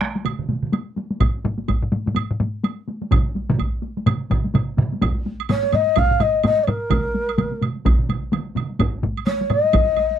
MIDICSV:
0, 0, Header, 1, 4, 480
1, 0, Start_track
1, 0, Tempo, 477327
1, 1216, Time_signature, 4, 2, 24, 8
1, 5051, Tempo, 471328
1, 10316, End_track
2, 0, Start_track
2, 0, Title_t, "Shakuhachi"
2, 0, Program_c, 0, 77
2, 5544, Note_on_c, 0, 73, 88
2, 5787, Note_on_c, 0, 75, 89
2, 5802, Note_off_c, 0, 73, 0
2, 6024, Note_on_c, 0, 77, 94
2, 6039, Note_off_c, 0, 75, 0
2, 6260, Note_on_c, 0, 75, 84
2, 6275, Note_off_c, 0, 77, 0
2, 6498, Note_off_c, 0, 75, 0
2, 6513, Note_on_c, 0, 75, 83
2, 6691, Note_on_c, 0, 73, 56
2, 6707, Note_off_c, 0, 75, 0
2, 6745, Note_on_c, 0, 70, 78
2, 6760, Note_off_c, 0, 73, 0
2, 7702, Note_off_c, 0, 70, 0
2, 9371, Note_on_c, 0, 73, 88
2, 9613, Note_on_c, 0, 75, 91
2, 9629, Note_off_c, 0, 73, 0
2, 10316, Note_off_c, 0, 75, 0
2, 10316, End_track
3, 0, Start_track
3, 0, Title_t, "Taiko and cinematic ensemble drums"
3, 9, Note_on_c, 9, 37, 66
3, 15, Note_on_c, 9, 48, 54
3, 109, Note_off_c, 9, 37, 0
3, 115, Note_off_c, 9, 48, 0
3, 154, Note_on_c, 9, 48, 48
3, 251, Note_off_c, 9, 48, 0
3, 251, Note_on_c, 9, 48, 68
3, 252, Note_on_c, 9, 47, 72
3, 352, Note_off_c, 9, 48, 0
3, 353, Note_off_c, 9, 47, 0
3, 394, Note_on_c, 9, 47, 68
3, 490, Note_off_c, 9, 47, 0
3, 490, Note_on_c, 9, 47, 69
3, 490, Note_on_c, 9, 48, 55
3, 590, Note_off_c, 9, 47, 0
3, 591, Note_off_c, 9, 48, 0
3, 631, Note_on_c, 9, 47, 68
3, 728, Note_on_c, 9, 48, 70
3, 732, Note_off_c, 9, 47, 0
3, 829, Note_off_c, 9, 48, 0
3, 969, Note_on_c, 9, 48, 52
3, 1070, Note_off_c, 9, 48, 0
3, 1112, Note_on_c, 9, 48, 50
3, 1210, Note_off_c, 9, 48, 0
3, 1210, Note_on_c, 9, 48, 71
3, 1213, Note_on_c, 9, 41, 86
3, 1215, Note_on_c, 9, 45, 91
3, 1310, Note_off_c, 9, 48, 0
3, 1314, Note_off_c, 9, 41, 0
3, 1315, Note_off_c, 9, 45, 0
3, 1452, Note_on_c, 9, 48, 61
3, 1457, Note_on_c, 9, 45, 94
3, 1553, Note_off_c, 9, 48, 0
3, 1558, Note_off_c, 9, 45, 0
3, 1594, Note_on_c, 9, 48, 50
3, 1691, Note_off_c, 9, 48, 0
3, 1691, Note_on_c, 9, 48, 67
3, 1697, Note_on_c, 9, 45, 70
3, 1701, Note_on_c, 9, 41, 62
3, 1792, Note_off_c, 9, 48, 0
3, 1797, Note_off_c, 9, 45, 0
3, 1801, Note_off_c, 9, 41, 0
3, 1836, Note_on_c, 9, 45, 69
3, 1928, Note_on_c, 9, 48, 56
3, 1931, Note_off_c, 9, 45, 0
3, 1931, Note_on_c, 9, 45, 76
3, 2029, Note_off_c, 9, 48, 0
3, 2031, Note_off_c, 9, 45, 0
3, 2074, Note_on_c, 9, 48, 50
3, 2086, Note_on_c, 9, 45, 77
3, 2170, Note_off_c, 9, 48, 0
3, 2170, Note_on_c, 9, 48, 67
3, 2177, Note_off_c, 9, 45, 0
3, 2177, Note_on_c, 9, 45, 71
3, 2271, Note_off_c, 9, 48, 0
3, 2278, Note_off_c, 9, 45, 0
3, 2320, Note_on_c, 9, 45, 73
3, 2413, Note_off_c, 9, 45, 0
3, 2413, Note_on_c, 9, 45, 92
3, 2414, Note_on_c, 9, 48, 52
3, 2514, Note_off_c, 9, 45, 0
3, 2515, Note_off_c, 9, 48, 0
3, 2650, Note_on_c, 9, 48, 64
3, 2750, Note_off_c, 9, 48, 0
3, 2892, Note_on_c, 9, 48, 49
3, 2993, Note_off_c, 9, 48, 0
3, 3033, Note_on_c, 9, 48, 50
3, 3129, Note_off_c, 9, 48, 0
3, 3129, Note_on_c, 9, 48, 57
3, 3132, Note_on_c, 9, 45, 97
3, 3137, Note_on_c, 9, 47, 107
3, 3141, Note_on_c, 9, 41, 94
3, 3229, Note_off_c, 9, 48, 0
3, 3233, Note_off_c, 9, 45, 0
3, 3237, Note_off_c, 9, 47, 0
3, 3242, Note_off_c, 9, 41, 0
3, 3370, Note_on_c, 9, 48, 50
3, 3470, Note_off_c, 9, 48, 0
3, 3512, Note_on_c, 9, 48, 52
3, 3517, Note_on_c, 9, 45, 105
3, 3523, Note_on_c, 9, 47, 108
3, 3609, Note_off_c, 9, 48, 0
3, 3609, Note_on_c, 9, 48, 67
3, 3617, Note_off_c, 9, 45, 0
3, 3618, Note_on_c, 9, 41, 62
3, 3624, Note_off_c, 9, 47, 0
3, 3710, Note_off_c, 9, 48, 0
3, 3718, Note_off_c, 9, 41, 0
3, 3845, Note_on_c, 9, 48, 52
3, 3945, Note_off_c, 9, 48, 0
3, 3994, Note_on_c, 9, 48, 50
3, 4086, Note_on_c, 9, 45, 93
3, 4088, Note_off_c, 9, 48, 0
3, 4088, Note_on_c, 9, 48, 69
3, 4096, Note_on_c, 9, 47, 100
3, 4187, Note_off_c, 9, 45, 0
3, 4189, Note_off_c, 9, 48, 0
3, 4197, Note_off_c, 9, 47, 0
3, 4324, Note_on_c, 9, 48, 53
3, 4334, Note_on_c, 9, 45, 105
3, 4335, Note_on_c, 9, 41, 64
3, 4336, Note_on_c, 9, 47, 106
3, 4424, Note_off_c, 9, 48, 0
3, 4434, Note_off_c, 9, 45, 0
3, 4436, Note_off_c, 9, 41, 0
3, 4437, Note_off_c, 9, 47, 0
3, 4467, Note_on_c, 9, 48, 51
3, 4565, Note_off_c, 9, 48, 0
3, 4565, Note_on_c, 9, 48, 70
3, 4575, Note_on_c, 9, 45, 99
3, 4575, Note_on_c, 9, 47, 97
3, 4665, Note_off_c, 9, 48, 0
3, 4675, Note_off_c, 9, 45, 0
3, 4675, Note_off_c, 9, 47, 0
3, 4804, Note_on_c, 9, 48, 55
3, 4810, Note_on_c, 9, 45, 99
3, 4811, Note_on_c, 9, 47, 116
3, 4904, Note_off_c, 9, 48, 0
3, 4911, Note_off_c, 9, 45, 0
3, 4911, Note_off_c, 9, 47, 0
3, 4952, Note_on_c, 9, 48, 55
3, 5042, Note_off_c, 9, 48, 0
3, 5042, Note_on_c, 9, 48, 69
3, 5045, Note_on_c, 9, 45, 92
3, 5055, Note_on_c, 9, 41, 111
3, 5144, Note_off_c, 9, 48, 0
3, 5146, Note_off_c, 9, 45, 0
3, 5157, Note_off_c, 9, 41, 0
3, 5189, Note_on_c, 9, 48, 21
3, 5291, Note_off_c, 9, 48, 0
3, 5291, Note_on_c, 9, 48, 52
3, 5393, Note_off_c, 9, 48, 0
3, 5437, Note_on_c, 9, 48, 22
3, 5530, Note_off_c, 9, 48, 0
3, 5530, Note_on_c, 9, 48, 67
3, 5533, Note_on_c, 9, 45, 95
3, 5632, Note_off_c, 9, 48, 0
3, 5634, Note_off_c, 9, 45, 0
3, 5672, Note_on_c, 9, 48, 45
3, 5765, Note_off_c, 9, 48, 0
3, 5765, Note_on_c, 9, 48, 57
3, 5775, Note_on_c, 9, 45, 98
3, 5867, Note_off_c, 9, 48, 0
3, 5876, Note_off_c, 9, 45, 0
3, 5912, Note_on_c, 9, 48, 22
3, 6009, Note_off_c, 9, 48, 0
3, 6009, Note_on_c, 9, 48, 71
3, 6011, Note_on_c, 9, 45, 67
3, 6016, Note_on_c, 9, 41, 95
3, 6111, Note_off_c, 9, 48, 0
3, 6113, Note_off_c, 9, 45, 0
3, 6118, Note_off_c, 9, 41, 0
3, 6155, Note_on_c, 9, 48, 22
3, 6157, Note_on_c, 9, 45, 71
3, 6250, Note_off_c, 9, 45, 0
3, 6250, Note_on_c, 9, 45, 95
3, 6251, Note_off_c, 9, 48, 0
3, 6251, Note_on_c, 9, 48, 54
3, 6352, Note_off_c, 9, 45, 0
3, 6353, Note_off_c, 9, 48, 0
3, 6394, Note_on_c, 9, 48, 22
3, 6492, Note_off_c, 9, 48, 0
3, 6492, Note_on_c, 9, 48, 77
3, 6501, Note_on_c, 9, 45, 87
3, 6594, Note_off_c, 9, 48, 0
3, 6602, Note_off_c, 9, 45, 0
3, 6638, Note_on_c, 9, 48, 22
3, 6732, Note_off_c, 9, 48, 0
3, 6732, Note_on_c, 9, 48, 58
3, 6741, Note_on_c, 9, 45, 97
3, 6834, Note_off_c, 9, 48, 0
3, 6843, Note_off_c, 9, 45, 0
3, 6970, Note_on_c, 9, 48, 73
3, 6972, Note_on_c, 9, 41, 97
3, 6974, Note_on_c, 9, 47, 94
3, 7072, Note_off_c, 9, 48, 0
3, 7074, Note_off_c, 9, 41, 0
3, 7076, Note_off_c, 9, 47, 0
3, 7119, Note_on_c, 9, 48, 24
3, 7210, Note_off_c, 9, 48, 0
3, 7210, Note_on_c, 9, 48, 60
3, 7312, Note_off_c, 9, 48, 0
3, 7352, Note_on_c, 9, 48, 22
3, 7449, Note_off_c, 9, 48, 0
3, 7449, Note_on_c, 9, 48, 77
3, 7454, Note_on_c, 9, 47, 99
3, 7551, Note_off_c, 9, 48, 0
3, 7556, Note_off_c, 9, 47, 0
3, 7590, Note_on_c, 9, 48, 49
3, 7690, Note_off_c, 9, 48, 0
3, 7690, Note_on_c, 9, 48, 56
3, 7695, Note_on_c, 9, 47, 88
3, 7792, Note_off_c, 9, 48, 0
3, 7797, Note_off_c, 9, 47, 0
3, 7835, Note_on_c, 9, 48, 21
3, 7931, Note_off_c, 9, 48, 0
3, 7931, Note_on_c, 9, 48, 68
3, 7932, Note_on_c, 9, 47, 67
3, 7937, Note_on_c, 9, 41, 100
3, 8033, Note_off_c, 9, 48, 0
3, 8034, Note_off_c, 9, 47, 0
3, 8039, Note_off_c, 9, 41, 0
3, 8078, Note_on_c, 9, 47, 63
3, 8079, Note_on_c, 9, 48, 22
3, 8173, Note_off_c, 9, 48, 0
3, 8173, Note_on_c, 9, 48, 54
3, 8176, Note_off_c, 9, 47, 0
3, 8176, Note_on_c, 9, 47, 95
3, 8275, Note_off_c, 9, 48, 0
3, 8278, Note_off_c, 9, 47, 0
3, 8315, Note_on_c, 9, 48, 21
3, 8409, Note_off_c, 9, 48, 0
3, 8409, Note_on_c, 9, 48, 69
3, 8413, Note_on_c, 9, 47, 93
3, 8510, Note_off_c, 9, 48, 0
3, 8515, Note_off_c, 9, 47, 0
3, 8553, Note_on_c, 9, 48, 23
3, 8644, Note_off_c, 9, 48, 0
3, 8644, Note_on_c, 9, 48, 52
3, 8652, Note_on_c, 9, 47, 102
3, 8746, Note_off_c, 9, 48, 0
3, 8754, Note_off_c, 9, 47, 0
3, 8795, Note_on_c, 9, 48, 23
3, 8890, Note_off_c, 9, 48, 0
3, 8890, Note_on_c, 9, 48, 67
3, 8897, Note_on_c, 9, 41, 106
3, 8900, Note_on_c, 9, 45, 89
3, 8992, Note_off_c, 9, 48, 0
3, 8999, Note_off_c, 9, 41, 0
3, 9002, Note_off_c, 9, 45, 0
3, 9037, Note_on_c, 9, 48, 23
3, 9129, Note_off_c, 9, 48, 0
3, 9129, Note_on_c, 9, 48, 59
3, 9135, Note_on_c, 9, 45, 89
3, 9231, Note_off_c, 9, 48, 0
3, 9237, Note_off_c, 9, 45, 0
3, 9279, Note_on_c, 9, 48, 23
3, 9374, Note_off_c, 9, 48, 0
3, 9374, Note_on_c, 9, 48, 75
3, 9475, Note_off_c, 9, 48, 0
3, 9517, Note_on_c, 9, 48, 49
3, 9611, Note_off_c, 9, 48, 0
3, 9611, Note_on_c, 9, 48, 62
3, 9612, Note_on_c, 9, 45, 101
3, 9713, Note_off_c, 9, 45, 0
3, 9713, Note_off_c, 9, 48, 0
3, 9758, Note_on_c, 9, 48, 23
3, 9846, Note_off_c, 9, 48, 0
3, 9846, Note_on_c, 9, 48, 69
3, 9851, Note_on_c, 9, 45, 89
3, 9854, Note_on_c, 9, 41, 101
3, 9948, Note_off_c, 9, 48, 0
3, 9953, Note_off_c, 9, 45, 0
3, 9956, Note_off_c, 9, 41, 0
3, 9993, Note_on_c, 9, 48, 22
3, 10088, Note_off_c, 9, 48, 0
3, 10088, Note_on_c, 9, 48, 54
3, 10189, Note_off_c, 9, 48, 0
3, 10228, Note_on_c, 9, 48, 23
3, 10316, Note_off_c, 9, 48, 0
3, 10316, End_track
4, 0, Start_track
4, 0, Title_t, "Drums"
4, 257, Note_on_c, 9, 76, 47
4, 358, Note_off_c, 9, 76, 0
4, 735, Note_on_c, 9, 76, 35
4, 835, Note_off_c, 9, 76, 0
4, 1212, Note_on_c, 9, 76, 51
4, 1313, Note_off_c, 9, 76, 0
4, 1694, Note_on_c, 9, 76, 40
4, 1794, Note_off_c, 9, 76, 0
4, 2173, Note_on_c, 9, 76, 55
4, 2274, Note_off_c, 9, 76, 0
4, 2658, Note_on_c, 9, 76, 39
4, 2758, Note_off_c, 9, 76, 0
4, 3137, Note_on_c, 9, 76, 55
4, 3238, Note_off_c, 9, 76, 0
4, 3615, Note_on_c, 9, 76, 42
4, 3715, Note_off_c, 9, 76, 0
4, 4090, Note_on_c, 9, 76, 53
4, 4190, Note_off_c, 9, 76, 0
4, 4334, Note_on_c, 9, 76, 41
4, 4435, Note_off_c, 9, 76, 0
4, 4575, Note_on_c, 9, 76, 41
4, 4676, Note_off_c, 9, 76, 0
4, 5050, Note_on_c, 9, 76, 56
4, 5152, Note_off_c, 9, 76, 0
4, 5435, Note_on_c, 9, 76, 46
4, 5527, Note_off_c, 9, 76, 0
4, 5527, Note_on_c, 9, 76, 43
4, 5629, Note_off_c, 9, 76, 0
4, 5766, Note_on_c, 9, 76, 41
4, 5868, Note_off_c, 9, 76, 0
4, 6002, Note_on_c, 9, 76, 57
4, 6104, Note_off_c, 9, 76, 0
4, 6253, Note_on_c, 9, 76, 44
4, 6355, Note_off_c, 9, 76, 0
4, 6489, Note_on_c, 9, 76, 42
4, 6591, Note_off_c, 9, 76, 0
4, 6732, Note_on_c, 9, 76, 42
4, 6834, Note_off_c, 9, 76, 0
4, 6969, Note_on_c, 9, 76, 57
4, 7071, Note_off_c, 9, 76, 0
4, 7359, Note_on_c, 9, 76, 46
4, 7455, Note_off_c, 9, 76, 0
4, 7455, Note_on_c, 9, 76, 42
4, 7557, Note_off_c, 9, 76, 0
4, 7701, Note_on_c, 9, 76, 44
4, 7803, Note_off_c, 9, 76, 0
4, 7941, Note_on_c, 9, 76, 48
4, 8043, Note_off_c, 9, 76, 0
4, 8181, Note_on_c, 9, 76, 41
4, 8283, Note_off_c, 9, 76, 0
4, 8419, Note_on_c, 9, 76, 39
4, 8521, Note_off_c, 9, 76, 0
4, 8665, Note_on_c, 9, 76, 40
4, 8767, Note_off_c, 9, 76, 0
4, 8894, Note_on_c, 9, 76, 48
4, 8995, Note_off_c, 9, 76, 0
4, 9279, Note_on_c, 9, 76, 41
4, 9371, Note_off_c, 9, 76, 0
4, 9371, Note_on_c, 9, 76, 40
4, 9473, Note_off_c, 9, 76, 0
4, 9608, Note_on_c, 9, 76, 39
4, 9709, Note_off_c, 9, 76, 0
4, 9847, Note_on_c, 9, 76, 48
4, 9949, Note_off_c, 9, 76, 0
4, 10084, Note_on_c, 9, 76, 39
4, 10186, Note_off_c, 9, 76, 0
4, 10316, End_track
0, 0, End_of_file